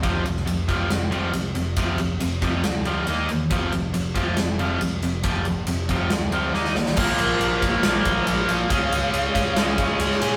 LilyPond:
<<
  \new Staff \with { instrumentName = "Lead electric guitar" } { \time 4/4 \key f \minor \tempo 4 = 138 r1 | r1 | r1 | r1 |
des''8 bes'4 des''4 des''4 f''8~ | f''2 f''8 des''4 aes''8 | }
  \new Staff \with { instrumentName = "Distorted electric guitar" } { \clef bass \time 4/4 \key f \minor <f, c f>8 <f, c>8 <f, c>8 <f, c f>8 <f, c>8 <f, c f>8 <f, c>8 <f, c>8 | <f, c f>8 <f, c>8 <f, c>8 <f, c f>8 <f, c>8 <f, c f>8 <ees bes ees'>8 <ees bes>8 | <f, c f>8 <f, c>8 <f, c>8 <f, c f>8 <f, c>8 <f, c f>8 <f, c>8 <f, c>8 | <f, c f>8 <f, c>8 <f, c>8 <f, c f>8 <f, c>8 <f, c f>8 <ees bes ees'>8 <ees bes>8 |
<bes, f bes>4. <bes, f bes>4. <bes, f bes>4 | <des aes des'>4. <des aes des'>4. <des aes des'>4 | }
  \new Staff \with { instrumentName = "Overdriven electric guitar" } { \clef bass \time 4/4 \key f \minor <f, c f>8 <f, c>8 <f, c>8 <f, c f>8 <f, c>8 <f, c f>8 <f, c>8 <f, c>8 | <f, c f>8 <f, c>8 <f, c>8 <f, c f>8 <f, c>8 <f, c f>8 <ees bes ees'>8 <ees bes>8 | <f, c f>8 <f, c>8 <f, c>8 <f, c f>8 <f, c>8 <f, c f>8 <f, c>8 <f, c>8 | <f, c f>8 <f, c>8 <f, c>8 <f, c f>8 <f, c>8 <f, c f>8 <ees bes ees'>8 <ees bes>8 |
<bes, f bes>2 <bes, f bes>2 | <des aes des'>2 <des aes des'>2 | }
  \new Staff \with { instrumentName = "Picked electric bass" } { \clef bass \time 4/4 \key f \minor f,,8 f,,8 f,,8 f,,8 f,,4 c,8 f,,8 | f,,8 f,,8 f,,8 f,,8 d,4 ees,8 e,8 | f,,8 f,,8 f,,8 f,,8 f,,4 c,8 f,,8 | f,,8 f,,8 f,,8 f,,8 d,4 ees,8 c,8 |
bes,,8 bes,,8 bes,,8 bes,,8 bes,,8 bes,,8 bes,,8 bes,,8 | des,8 des,8 des,8 des,8 des,4 des,8 bes,8 | }
  \new DrumStaff \with { instrumentName = "Drums" } \drummode { \time 4/4 <bd cymr>8 cymr16 sn16 cymr8 <bd cymr>8 <cymr sn>8 cymr8 cymr8 cymr8 | <bd cymr>8 cymr8 cymr8 <bd cymr>8 <cymr sn>8 cymr8 cymr8 cymr8 | <bd cymr>8 cymr8 cymr8 <bd cymr>8 <cymr sn>8 cymr8 cymr8 cymr8 | <bd cymr>8 cymr8 cymr8 <bd cymr>8 <cymr sn>8 cymr8 sn16 sn16 sn16 sn16 |
<cymc bd>8 cymr8 cymr8 <bd cymr>8 <cymr sn>8 <bd cymr>8 cymr8 cymr8 | <bd cymr>8 cymr8 cymr8 <bd cymr>8 <cymr sn>8 <bd cymr>8 cymr16 sn16 cymr8 | }
>>